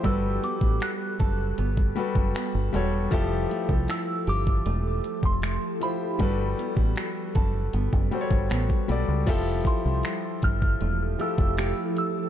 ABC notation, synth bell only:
X:1
M:4/4
L:1/16
Q:1/4=78
K:Gdor
V:1 name="Synth bell"
e'2 d'2 ^f'8- f'2 z2 | z4 e'2 d'4- d' c'3 =b2- | =b12 z4 | z2 c'4 f'4 e'4 e'2 |]